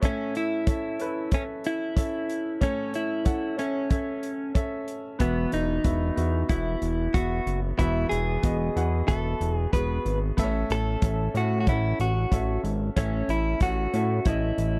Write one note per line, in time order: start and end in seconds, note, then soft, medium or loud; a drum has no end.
0.02 0.96 A2 medium
0.02 0.48 C#4 medium
0.02 0.34 C#4 medium
0.02 0.48 A4 medium
0.02 0.49 E5 medium
0.02 kick medium
0.02 closed hi-hat medium
0.35 1.34 E4 medium
0.35 closed hi-hat medium
0.67 0.90 C#4 medium
0.67 0.90 A4 medium
0.67 0.91 E5 medium
0.67 kick medium
0.67 closed hi-hat medium
1.00 1.22 C#4 medium
1.00 1.23 A4 soft
1.00 1.23 B4 medium
1.00 closed hi-hat medium
1.31 1.78 C#4 medium
1.31 1.43 C#4 medium
1.31 1.78 A4 medium
1.31 1.79 E5 medium
1.31 kick medium
1.31 closed hi-hat medium
1.64 2.63 E4 medium
1.64 closed hi-hat medium
1.96 2.42 C#4 medium
1.96 2.43 A4 medium
1.96 2.43 E5 medium
1.96 kick loud
1.96 closed hi-hat medium
2.30 closed hi-hat medium
2.61 3.55 A2 medium
2.61 3.07 C#4 medium
2.61 2.95 C#4 medium
2.61 3.07 A4 medium
2.61 3.08 C#5 medium
2.61 kick medium
2.61 closed hi-hat medium
2.94 3.55 E4 medium
2.94 closed hi-hat medium
3.25 3.48 C#4 medium
3.25 3.49 A4 medium
3.25 3.49 F#5 medium
3.25 kick medium
3.25 closed hi-hat medium
3.57 3.81 C#4 medium
3.57 4.52 C#4 medium
3.57 3.81 A4 soft
3.57 3.81 E5 medium
3.57 closed hi-hat medium
3.90 4.36 C#4 medium
3.90 4.36 A4 medium
3.90 4.37 E5 medium
3.90 kick medium
3.90 closed hi-hat medium
4.23 closed hi-hat medium
4.55 5.01 C#4 medium
4.55 5.01 A4 medium
4.55 5.02 E5 medium
4.55 kick loud
4.55 closed hi-hat medium
4.88 closed hi-hat medium
5.19 5.47 E1 loud
5.19 6.13 E3 medium
5.19 5.65 B3 medium
5.19 5.53 B3 medium
5.19 5.66 F#4 medium
5.19 5.66 E5 medium
5.19 kick medium
5.19 closed hi-hat medium
5.52 5.79 E1 medium
5.52 6.49 D#4 medium
5.52 closed hi-hat medium
5.84 6.11 E1 medium
5.84 6.07 B3 medium
5.84 6.08 F#4 medium
5.84 6.08 E5 medium
5.84 kick medium
5.84 closed hi-hat medium
6.16 6.44 E2 medium
6.16 6.39 B3 medium
6.16 6.40 F#4 soft
6.16 6.41 E5 medium
6.16 closed hi-hat medium
6.49 6.76 E1 medium
6.49 6.95 B3 medium
6.49 7.16 E4 medium
6.49 6.95 F#4 medium
6.49 6.96 E5 medium
6.49 kick medium
6.49 closed hi-hat medium
6.82 7.08 E1 medium
6.82 closed hi-hat medium
7.14 7.41 E1 medium
7.14 7.60 B3 medium
7.14 7.59 F#4 medium
7.14 7.60 F#4 medium
7.14 7.61 E5 medium
7.14 kick medium
7.14 closed hi-hat medium
7.46 7.73 F#1 medium
7.46 closed hi-hat medium
7.78 8.06 E1 medium
7.78 8.72 E3 medium
7.78 8.24 B3 medium
7.78 8.09 E4 medium
7.78 8.25 F#4 medium
7.78 8.26 E5 medium
7.78 kick medium
7.78 closed hi-hat medium
8.09 8.38 E1 medium
8.09 9.08 G#4 medium
8.09 closed hi-hat medium
8.43 8.70 E1 loud
8.43 8.66 B3 medium
8.43 8.67 F#4 medium
8.43 8.67 D#5 medium
8.43 kick medium
8.43 closed hi-hat medium
8.76 9.03 E2 medium
8.76 8.99 B3 medium
8.76 8.99 F#4 soft
8.76 9.00 F#5 medium
8.76 closed hi-hat medium
9.08 9.35 E1 medium
9.08 9.54 B3 medium
9.08 9.54 F#4 medium
9.08 9.55 A4 medium
9.08 9.55 E5 medium
9.08 kick medium
9.08 closed hi-hat medium
9.41 9.67 E1 medium
9.41 closed hi-hat medium
9.55 9.73 G#4 medium
9.73 10.00 E1 medium
9.73 10.19 B3 medium
9.73 10.19 F#4 medium
9.73 10.20 G#4 medium
9.73 10.18 B4 medium
9.73 kick medium
9.73 closed hi-hat medium
10.05 10.32 G#1 medium
10.05 closed hi-hat medium
10.37 10.64 A1 medium
10.37 11.31 A2 medium
10.37 10.44 B3 medium
10.37 10.84 A4 medium
10.37 10.84 E5 loud
10.37 kick medium
10.37 closed hi-hat medium
10.44 10.86 C#4 medium
10.70 10.96 A1 medium
10.70 11.37 A4 medium
10.70 closed hi-hat medium
11.01 11.29 A1 loud
11.01 11.25 C#4 medium
11.01 11.25 A4 medium
11.01 11.26 E5 medium
11.01 kick loud
11.01 closed hi-hat medium
11.34 11.69 A2 medium
11.34 11.57 C#4 medium
11.34 11.59 F#4 medium
11.34 11.58 A4 soft
11.34 11.58 E5 medium
11.34 closed hi-hat medium
11.60 11.67 F#4 medium
11.67 11.94 A1 medium
11.67 12.13 C#4 medium
11.67 12.00 E4 medium
11.67 12.13 A4 medium
11.67 12.14 F#5 medium
11.67 kick medium
11.67 closed hi-hat medium
12.00 12.26 A1 medium
12.00 12.61 F#4 medium
12.00 closed hi-hat medium
12.31 12.58 A1 medium
12.31 12.77 C#4 medium
12.31 12.78 A4 medium
12.31 12.78 E5 medium
12.31 kick medium
12.31 closed hi-hat medium
12.63 12.90 G#1 medium
12.63 closed hi-hat medium
12.96 13.23 A1 loud
12.96 13.90 A2 medium
12.96 13.42 C#4 medium
12.96 13.30 C#4 medium
12.96 13.43 A4 medium
12.96 13.43 E5 medium
12.96 kick medium
12.96 closed hi-hat medium
13.28 13.55 A1 medium
13.28 13.59 E4 medium
13.28 closed hi-hat medium
13.60 13.87 A1 medium
13.60 13.84 C#4 medium
13.60 14.28 F#4 medium
13.60 13.84 A4 medium
13.60 13.85 F#5 medium
13.60 kick medium
13.60 closed hi-hat medium
13.94 14.20 A2 medium
13.94 14.16 C#4 medium
13.94 14.17 A4 soft
13.94 14.17 E5 medium
13.94 closed hi-hat medium
14.25 14.52 A1 loud
14.25 14.71 C#4 medium
14.25 14.79 E4 medium
14.25 14.72 A4 medium
14.25 14.73 D#5 medium
14.25 kick medium
14.25 closed hi-hat medium
14.58 14.79 A1 medium
14.58 closed hi-hat medium